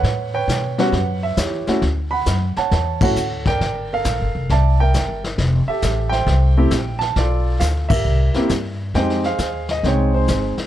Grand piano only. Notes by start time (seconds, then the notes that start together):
Already playing: B4 C#5 F#5
0.34 B4 C#5 G5
0.78 G3 B3 C#4 F#4 B4 C#5 F#5
1.23 E5
1.37 E4 G4 C#5
1.68 A3 C#4 E4 F#4
2.11 F#5 B5
2.57 C#5 F#5 A5
3.02 A3 C#4 E4 F#4 A4 C#5 F#5
3.47 A#4 D5 G5
3.93 A4 A#4 F5
4.51 D5 E5 A5
4.80 A#4 E5 G5
5.68 G4 A4 E5
6.09 C5 E5 G5
6.57 A3 C4 E4 G4
6.99 A5
7.17 F4 A4 D5
7.60 F5
7.89 G4 A#4 E5
8.36 A#3 C4 E4 G4
8.95 G#3 C4 D#4 G4 C5 D#5 G5
9.25 G#4 C5 F5
9.71 D#5
9.84 G#3 C4 D#4 G#4 C#5 G5
10.14 D#4 G#4 C5